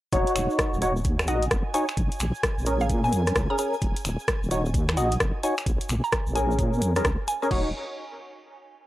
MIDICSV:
0, 0, Header, 1, 6, 480
1, 0, Start_track
1, 0, Key_signature, -6, "minor"
1, 0, Tempo, 461538
1, 131, Time_signature, 4, 2, 24, 8
1, 9224, End_track
2, 0, Start_track
2, 0, Title_t, "Ambient pad"
2, 0, Program_c, 0, 92
2, 133, Note_on_c, 0, 80, 85
2, 7824, Note_off_c, 0, 80, 0
2, 9224, End_track
3, 0, Start_track
3, 0, Title_t, "Synth pluck"
3, 0, Program_c, 1, 84
3, 1332, Note_on_c, 1, 78, 94
3, 1469, Note_off_c, 1, 78, 0
3, 1810, Note_on_c, 1, 80, 92
3, 1948, Note_off_c, 1, 80, 0
3, 2922, Note_on_c, 1, 77, 94
3, 3003, Note_off_c, 1, 77, 0
3, 3162, Note_on_c, 1, 80, 93
3, 3490, Note_off_c, 1, 80, 0
3, 3641, Note_on_c, 1, 82, 91
3, 3698, Note_off_c, 1, 82, 0
3, 3730, Note_on_c, 1, 82, 75
3, 3828, Note_off_c, 1, 82, 0
3, 5168, Note_on_c, 1, 78, 96
3, 5308, Note_off_c, 1, 78, 0
3, 5651, Note_on_c, 1, 80, 87
3, 5789, Note_off_c, 1, 80, 0
3, 6281, Note_on_c, 1, 82, 94
3, 6362, Note_off_c, 1, 82, 0
3, 6609, Note_on_c, 1, 80, 94
3, 6748, Note_off_c, 1, 80, 0
3, 7570, Note_on_c, 1, 80, 89
3, 7667, Note_off_c, 1, 80, 0
3, 7721, Note_on_c, 1, 80, 75
3, 7778, Note_off_c, 1, 80, 0
3, 9224, End_track
4, 0, Start_track
4, 0, Title_t, "Synth stab"
4, 0, Program_c, 2, 62
4, 131, Note_on_c, 2, 63, 109
4, 131, Note_on_c, 2, 73, 115
4, 132, Note_on_c, 2, 66, 97
4, 816, Note_off_c, 2, 63, 0
4, 816, Note_off_c, 2, 66, 0
4, 816, Note_off_c, 2, 73, 0
4, 851, Note_on_c, 2, 63, 85
4, 851, Note_on_c, 2, 73, 99
4, 852, Note_on_c, 2, 66, 81
4, 964, Note_off_c, 2, 63, 0
4, 964, Note_off_c, 2, 66, 0
4, 964, Note_off_c, 2, 73, 0
4, 1331, Note_on_c, 2, 63, 91
4, 1331, Note_on_c, 2, 75, 107
4, 1332, Note_on_c, 2, 66, 87
4, 1500, Note_off_c, 2, 63, 0
4, 1500, Note_off_c, 2, 66, 0
4, 1500, Note_off_c, 2, 75, 0
4, 1812, Note_on_c, 2, 63, 99
4, 1812, Note_on_c, 2, 66, 85
4, 1812, Note_on_c, 2, 73, 106
4, 1924, Note_off_c, 2, 63, 0
4, 1924, Note_off_c, 2, 66, 0
4, 1924, Note_off_c, 2, 73, 0
4, 2771, Note_on_c, 2, 61, 79
4, 2771, Note_on_c, 2, 70, 80
4, 2772, Note_on_c, 2, 68, 70
4, 3606, Note_off_c, 2, 61, 0
4, 3606, Note_off_c, 2, 68, 0
4, 3606, Note_off_c, 2, 70, 0
4, 3643, Note_on_c, 2, 61, 80
4, 3643, Note_on_c, 2, 68, 77
4, 3643, Note_on_c, 2, 70, 93
4, 3708, Note_off_c, 2, 61, 0
4, 3708, Note_off_c, 2, 68, 0
4, 3708, Note_off_c, 2, 70, 0
4, 3731, Note_on_c, 2, 61, 80
4, 3731, Note_on_c, 2, 68, 75
4, 3731, Note_on_c, 2, 70, 90
4, 3899, Note_off_c, 2, 68, 0
4, 3899, Note_off_c, 2, 70, 0
4, 3900, Note_off_c, 2, 61, 0
4, 4690, Note_on_c, 2, 63, 88
4, 4690, Note_on_c, 2, 66, 80
4, 4690, Note_on_c, 2, 73, 96
4, 4803, Note_off_c, 2, 63, 0
4, 4803, Note_off_c, 2, 66, 0
4, 4803, Note_off_c, 2, 73, 0
4, 5170, Note_on_c, 2, 63, 100
4, 5170, Note_on_c, 2, 66, 87
4, 5170, Note_on_c, 2, 75, 103
4, 5339, Note_off_c, 2, 63, 0
4, 5339, Note_off_c, 2, 66, 0
4, 5339, Note_off_c, 2, 75, 0
4, 5650, Note_on_c, 2, 63, 98
4, 5650, Note_on_c, 2, 66, 88
4, 5650, Note_on_c, 2, 73, 107
4, 5763, Note_off_c, 2, 63, 0
4, 5763, Note_off_c, 2, 66, 0
4, 5763, Note_off_c, 2, 73, 0
4, 6611, Note_on_c, 2, 61, 78
4, 6611, Note_on_c, 2, 68, 70
4, 6611, Note_on_c, 2, 70, 82
4, 7212, Note_off_c, 2, 61, 0
4, 7212, Note_off_c, 2, 68, 0
4, 7212, Note_off_c, 2, 70, 0
4, 7242, Note_on_c, 2, 68, 84
4, 7243, Note_on_c, 2, 61, 94
4, 7243, Note_on_c, 2, 70, 99
4, 7360, Note_off_c, 2, 61, 0
4, 7360, Note_off_c, 2, 68, 0
4, 7360, Note_off_c, 2, 70, 0
4, 7722, Note_on_c, 2, 61, 97
4, 7723, Note_on_c, 2, 68, 90
4, 7723, Note_on_c, 2, 70, 104
4, 7800, Note_off_c, 2, 61, 0
4, 7800, Note_off_c, 2, 68, 0
4, 7800, Note_off_c, 2, 70, 0
4, 7811, Note_on_c, 2, 63, 92
4, 7811, Note_on_c, 2, 66, 83
4, 7811, Note_on_c, 2, 73, 99
4, 8001, Note_off_c, 2, 63, 0
4, 8001, Note_off_c, 2, 66, 0
4, 8001, Note_off_c, 2, 73, 0
4, 9224, End_track
5, 0, Start_track
5, 0, Title_t, "Wobble bass"
5, 0, Program_c, 3, 39
5, 131, Note_on_c, 3, 27, 104
5, 256, Note_off_c, 3, 27, 0
5, 370, Note_on_c, 3, 27, 101
5, 495, Note_off_c, 3, 27, 0
5, 762, Note_on_c, 3, 27, 82
5, 1091, Note_on_c, 3, 39, 108
5, 1106, Note_off_c, 3, 27, 0
5, 1330, Note_on_c, 3, 34, 99
5, 1346, Note_off_c, 3, 39, 0
5, 1539, Note_off_c, 3, 34, 0
5, 1571, Note_on_c, 3, 30, 92
5, 1696, Note_off_c, 3, 30, 0
5, 2051, Note_on_c, 3, 34, 103
5, 2176, Note_off_c, 3, 34, 0
5, 2290, Note_on_c, 3, 34, 101
5, 2415, Note_off_c, 3, 34, 0
5, 2682, Note_on_c, 3, 34, 80
5, 3011, Note_on_c, 3, 46, 104
5, 3026, Note_off_c, 3, 34, 0
5, 3251, Note_on_c, 3, 41, 99
5, 3266, Note_off_c, 3, 46, 0
5, 3459, Note_off_c, 3, 41, 0
5, 3490, Note_on_c, 3, 37, 91
5, 3615, Note_off_c, 3, 37, 0
5, 3970, Note_on_c, 3, 27, 104
5, 4095, Note_off_c, 3, 27, 0
5, 4211, Note_on_c, 3, 27, 101
5, 4336, Note_off_c, 3, 27, 0
5, 4602, Note_on_c, 3, 27, 85
5, 4930, Note_on_c, 3, 39, 102
5, 4945, Note_off_c, 3, 27, 0
5, 5170, Note_on_c, 3, 34, 99
5, 5185, Note_off_c, 3, 39, 0
5, 5379, Note_off_c, 3, 34, 0
5, 5410, Note_on_c, 3, 30, 86
5, 5536, Note_off_c, 3, 30, 0
5, 5890, Note_on_c, 3, 34, 105
5, 6015, Note_off_c, 3, 34, 0
5, 6130, Note_on_c, 3, 34, 103
5, 6255, Note_off_c, 3, 34, 0
5, 6521, Note_on_c, 3, 34, 85
5, 6849, Note_on_c, 3, 46, 106
5, 6865, Note_off_c, 3, 34, 0
5, 7089, Note_on_c, 3, 41, 98
5, 7105, Note_off_c, 3, 46, 0
5, 7299, Note_off_c, 3, 41, 0
5, 7330, Note_on_c, 3, 37, 91
5, 7455, Note_off_c, 3, 37, 0
5, 7810, Note_on_c, 3, 27, 102
5, 8033, Note_off_c, 3, 27, 0
5, 9224, End_track
6, 0, Start_track
6, 0, Title_t, "Drums"
6, 131, Note_on_c, 9, 36, 117
6, 131, Note_on_c, 9, 42, 62
6, 134, Note_on_c, 9, 82, 52
6, 235, Note_off_c, 9, 36, 0
6, 235, Note_off_c, 9, 42, 0
6, 238, Note_off_c, 9, 82, 0
6, 279, Note_on_c, 9, 82, 37
6, 283, Note_on_c, 9, 42, 65
6, 371, Note_off_c, 9, 42, 0
6, 371, Note_on_c, 9, 26, 59
6, 371, Note_on_c, 9, 42, 113
6, 376, Note_off_c, 9, 82, 0
6, 376, Note_on_c, 9, 82, 94
6, 475, Note_off_c, 9, 26, 0
6, 475, Note_off_c, 9, 42, 0
6, 480, Note_off_c, 9, 82, 0
6, 522, Note_on_c, 9, 82, 36
6, 611, Note_on_c, 9, 36, 123
6, 611, Note_on_c, 9, 37, 118
6, 611, Note_on_c, 9, 42, 63
6, 615, Note_off_c, 9, 82, 0
6, 615, Note_on_c, 9, 82, 52
6, 715, Note_off_c, 9, 36, 0
6, 715, Note_off_c, 9, 37, 0
6, 715, Note_off_c, 9, 42, 0
6, 719, Note_off_c, 9, 82, 0
6, 766, Note_on_c, 9, 82, 35
6, 850, Note_on_c, 9, 42, 97
6, 854, Note_off_c, 9, 82, 0
6, 854, Note_on_c, 9, 82, 89
6, 954, Note_off_c, 9, 42, 0
6, 958, Note_off_c, 9, 82, 0
6, 1002, Note_on_c, 9, 82, 38
6, 1085, Note_off_c, 9, 82, 0
6, 1085, Note_on_c, 9, 82, 53
6, 1090, Note_on_c, 9, 42, 67
6, 1091, Note_on_c, 9, 36, 120
6, 1189, Note_off_c, 9, 82, 0
6, 1194, Note_off_c, 9, 42, 0
6, 1195, Note_off_c, 9, 36, 0
6, 1242, Note_on_c, 9, 26, 70
6, 1242, Note_on_c, 9, 37, 64
6, 1243, Note_on_c, 9, 82, 37
6, 1327, Note_off_c, 9, 82, 0
6, 1327, Note_on_c, 9, 82, 90
6, 1330, Note_on_c, 9, 42, 113
6, 1346, Note_off_c, 9, 26, 0
6, 1346, Note_off_c, 9, 37, 0
6, 1431, Note_off_c, 9, 82, 0
6, 1434, Note_off_c, 9, 42, 0
6, 1481, Note_on_c, 9, 82, 33
6, 1483, Note_on_c, 9, 42, 64
6, 1571, Note_off_c, 9, 42, 0
6, 1571, Note_on_c, 9, 36, 123
6, 1571, Note_on_c, 9, 37, 114
6, 1571, Note_on_c, 9, 42, 66
6, 1572, Note_off_c, 9, 82, 0
6, 1572, Note_on_c, 9, 82, 52
6, 1675, Note_off_c, 9, 36, 0
6, 1675, Note_off_c, 9, 37, 0
6, 1675, Note_off_c, 9, 42, 0
6, 1676, Note_off_c, 9, 82, 0
6, 1811, Note_on_c, 9, 42, 97
6, 1816, Note_on_c, 9, 82, 99
6, 1915, Note_off_c, 9, 42, 0
6, 1920, Note_off_c, 9, 82, 0
6, 1958, Note_on_c, 9, 82, 39
6, 1964, Note_on_c, 9, 26, 55
6, 2051, Note_off_c, 9, 82, 0
6, 2051, Note_on_c, 9, 36, 123
6, 2051, Note_on_c, 9, 42, 62
6, 2051, Note_on_c, 9, 82, 58
6, 2068, Note_off_c, 9, 26, 0
6, 2155, Note_off_c, 9, 36, 0
6, 2155, Note_off_c, 9, 42, 0
6, 2155, Note_off_c, 9, 82, 0
6, 2202, Note_on_c, 9, 82, 39
6, 2203, Note_on_c, 9, 42, 65
6, 2284, Note_off_c, 9, 82, 0
6, 2284, Note_on_c, 9, 82, 107
6, 2291, Note_off_c, 9, 42, 0
6, 2291, Note_on_c, 9, 26, 58
6, 2291, Note_on_c, 9, 42, 106
6, 2388, Note_off_c, 9, 82, 0
6, 2395, Note_off_c, 9, 26, 0
6, 2395, Note_off_c, 9, 42, 0
6, 2439, Note_on_c, 9, 82, 40
6, 2531, Note_on_c, 9, 36, 127
6, 2531, Note_on_c, 9, 37, 123
6, 2531, Note_on_c, 9, 42, 62
6, 2533, Note_off_c, 9, 82, 0
6, 2533, Note_on_c, 9, 82, 47
6, 2635, Note_off_c, 9, 36, 0
6, 2635, Note_off_c, 9, 37, 0
6, 2635, Note_off_c, 9, 42, 0
6, 2637, Note_off_c, 9, 82, 0
6, 2687, Note_on_c, 9, 82, 38
6, 2765, Note_off_c, 9, 82, 0
6, 2765, Note_on_c, 9, 82, 94
6, 2770, Note_on_c, 9, 42, 97
6, 2869, Note_off_c, 9, 82, 0
6, 2874, Note_off_c, 9, 42, 0
6, 2912, Note_on_c, 9, 82, 39
6, 3010, Note_on_c, 9, 42, 61
6, 3011, Note_on_c, 9, 36, 127
6, 3012, Note_off_c, 9, 82, 0
6, 3012, Note_on_c, 9, 82, 54
6, 3114, Note_off_c, 9, 42, 0
6, 3115, Note_off_c, 9, 36, 0
6, 3116, Note_off_c, 9, 82, 0
6, 3163, Note_on_c, 9, 82, 41
6, 3249, Note_off_c, 9, 82, 0
6, 3249, Note_on_c, 9, 82, 105
6, 3251, Note_on_c, 9, 42, 109
6, 3353, Note_off_c, 9, 82, 0
6, 3355, Note_off_c, 9, 42, 0
6, 3395, Note_on_c, 9, 82, 40
6, 3403, Note_on_c, 9, 37, 65
6, 3403, Note_on_c, 9, 42, 63
6, 3490, Note_off_c, 9, 37, 0
6, 3490, Note_off_c, 9, 42, 0
6, 3490, Note_on_c, 9, 37, 123
6, 3490, Note_on_c, 9, 42, 66
6, 3491, Note_off_c, 9, 82, 0
6, 3491, Note_on_c, 9, 36, 127
6, 3491, Note_on_c, 9, 82, 59
6, 3594, Note_off_c, 9, 37, 0
6, 3594, Note_off_c, 9, 42, 0
6, 3595, Note_off_c, 9, 36, 0
6, 3595, Note_off_c, 9, 82, 0
6, 3725, Note_on_c, 9, 82, 99
6, 3731, Note_on_c, 9, 42, 96
6, 3829, Note_off_c, 9, 82, 0
6, 3835, Note_off_c, 9, 42, 0
6, 3883, Note_on_c, 9, 82, 42
6, 3964, Note_off_c, 9, 82, 0
6, 3964, Note_on_c, 9, 82, 52
6, 3970, Note_on_c, 9, 36, 123
6, 3971, Note_on_c, 9, 42, 61
6, 4068, Note_off_c, 9, 82, 0
6, 4074, Note_off_c, 9, 36, 0
6, 4075, Note_off_c, 9, 42, 0
6, 4123, Note_on_c, 9, 42, 64
6, 4125, Note_on_c, 9, 82, 40
6, 4211, Note_off_c, 9, 42, 0
6, 4211, Note_on_c, 9, 26, 57
6, 4211, Note_on_c, 9, 42, 100
6, 4212, Note_off_c, 9, 82, 0
6, 4212, Note_on_c, 9, 82, 110
6, 4315, Note_off_c, 9, 26, 0
6, 4315, Note_off_c, 9, 42, 0
6, 4316, Note_off_c, 9, 82, 0
6, 4361, Note_on_c, 9, 82, 44
6, 4450, Note_off_c, 9, 82, 0
6, 4450, Note_on_c, 9, 36, 125
6, 4450, Note_on_c, 9, 82, 51
6, 4451, Note_on_c, 9, 37, 120
6, 4451, Note_on_c, 9, 42, 62
6, 4554, Note_off_c, 9, 36, 0
6, 4554, Note_off_c, 9, 82, 0
6, 4555, Note_off_c, 9, 37, 0
6, 4555, Note_off_c, 9, 42, 0
6, 4610, Note_on_c, 9, 82, 37
6, 4691, Note_off_c, 9, 82, 0
6, 4691, Note_on_c, 9, 42, 92
6, 4691, Note_on_c, 9, 82, 101
6, 4795, Note_off_c, 9, 42, 0
6, 4795, Note_off_c, 9, 82, 0
6, 4839, Note_on_c, 9, 82, 42
6, 4930, Note_on_c, 9, 36, 127
6, 4932, Note_on_c, 9, 42, 62
6, 4936, Note_off_c, 9, 82, 0
6, 4936, Note_on_c, 9, 82, 56
6, 5034, Note_off_c, 9, 36, 0
6, 5036, Note_off_c, 9, 42, 0
6, 5040, Note_off_c, 9, 82, 0
6, 5080, Note_on_c, 9, 82, 40
6, 5083, Note_on_c, 9, 26, 74
6, 5083, Note_on_c, 9, 37, 67
6, 5170, Note_off_c, 9, 82, 0
6, 5170, Note_on_c, 9, 42, 106
6, 5170, Note_on_c, 9, 82, 102
6, 5187, Note_off_c, 9, 26, 0
6, 5187, Note_off_c, 9, 37, 0
6, 5274, Note_off_c, 9, 42, 0
6, 5274, Note_off_c, 9, 82, 0
6, 5318, Note_on_c, 9, 82, 38
6, 5323, Note_on_c, 9, 42, 61
6, 5410, Note_off_c, 9, 42, 0
6, 5410, Note_on_c, 9, 36, 127
6, 5410, Note_on_c, 9, 37, 127
6, 5410, Note_on_c, 9, 42, 63
6, 5413, Note_off_c, 9, 82, 0
6, 5413, Note_on_c, 9, 82, 60
6, 5514, Note_off_c, 9, 36, 0
6, 5514, Note_off_c, 9, 37, 0
6, 5514, Note_off_c, 9, 42, 0
6, 5517, Note_off_c, 9, 82, 0
6, 5651, Note_on_c, 9, 42, 92
6, 5656, Note_on_c, 9, 82, 90
6, 5755, Note_off_c, 9, 42, 0
6, 5760, Note_off_c, 9, 82, 0
6, 5798, Note_on_c, 9, 82, 46
6, 5803, Note_on_c, 9, 26, 52
6, 5890, Note_on_c, 9, 36, 127
6, 5891, Note_on_c, 9, 42, 63
6, 5896, Note_off_c, 9, 82, 0
6, 5896, Note_on_c, 9, 82, 61
6, 5907, Note_off_c, 9, 26, 0
6, 5994, Note_off_c, 9, 36, 0
6, 5995, Note_off_c, 9, 42, 0
6, 6000, Note_off_c, 9, 82, 0
6, 6041, Note_on_c, 9, 82, 42
6, 6043, Note_on_c, 9, 42, 65
6, 6126, Note_off_c, 9, 82, 0
6, 6126, Note_on_c, 9, 82, 92
6, 6131, Note_off_c, 9, 42, 0
6, 6131, Note_on_c, 9, 26, 57
6, 6131, Note_on_c, 9, 42, 97
6, 6230, Note_off_c, 9, 82, 0
6, 6235, Note_off_c, 9, 26, 0
6, 6235, Note_off_c, 9, 42, 0
6, 6284, Note_on_c, 9, 82, 38
6, 6366, Note_off_c, 9, 82, 0
6, 6366, Note_on_c, 9, 82, 48
6, 6370, Note_on_c, 9, 36, 127
6, 6370, Note_on_c, 9, 37, 121
6, 6370, Note_on_c, 9, 42, 62
6, 6470, Note_off_c, 9, 82, 0
6, 6474, Note_off_c, 9, 36, 0
6, 6474, Note_off_c, 9, 37, 0
6, 6474, Note_off_c, 9, 42, 0
6, 6517, Note_on_c, 9, 82, 39
6, 6609, Note_on_c, 9, 42, 89
6, 6618, Note_off_c, 9, 82, 0
6, 6618, Note_on_c, 9, 82, 95
6, 6713, Note_off_c, 9, 42, 0
6, 6722, Note_off_c, 9, 82, 0
6, 6771, Note_on_c, 9, 82, 42
6, 6850, Note_on_c, 9, 36, 127
6, 6850, Note_on_c, 9, 42, 63
6, 6857, Note_off_c, 9, 82, 0
6, 6857, Note_on_c, 9, 82, 57
6, 6954, Note_off_c, 9, 36, 0
6, 6954, Note_off_c, 9, 42, 0
6, 6961, Note_off_c, 9, 82, 0
6, 7002, Note_on_c, 9, 82, 39
6, 7090, Note_on_c, 9, 42, 102
6, 7091, Note_off_c, 9, 82, 0
6, 7091, Note_on_c, 9, 82, 94
6, 7194, Note_off_c, 9, 42, 0
6, 7195, Note_off_c, 9, 82, 0
6, 7235, Note_on_c, 9, 82, 41
6, 7242, Note_on_c, 9, 37, 65
6, 7242, Note_on_c, 9, 42, 62
6, 7330, Note_off_c, 9, 37, 0
6, 7330, Note_off_c, 9, 42, 0
6, 7330, Note_on_c, 9, 36, 127
6, 7330, Note_on_c, 9, 37, 127
6, 7330, Note_on_c, 9, 42, 64
6, 7331, Note_off_c, 9, 82, 0
6, 7331, Note_on_c, 9, 82, 56
6, 7434, Note_off_c, 9, 36, 0
6, 7434, Note_off_c, 9, 37, 0
6, 7434, Note_off_c, 9, 42, 0
6, 7435, Note_off_c, 9, 82, 0
6, 7570, Note_on_c, 9, 42, 90
6, 7571, Note_on_c, 9, 82, 92
6, 7674, Note_off_c, 9, 42, 0
6, 7675, Note_off_c, 9, 82, 0
6, 7723, Note_on_c, 9, 82, 38
6, 7810, Note_on_c, 9, 36, 112
6, 7811, Note_on_c, 9, 49, 89
6, 7827, Note_off_c, 9, 82, 0
6, 7914, Note_off_c, 9, 36, 0
6, 7915, Note_off_c, 9, 49, 0
6, 9224, End_track
0, 0, End_of_file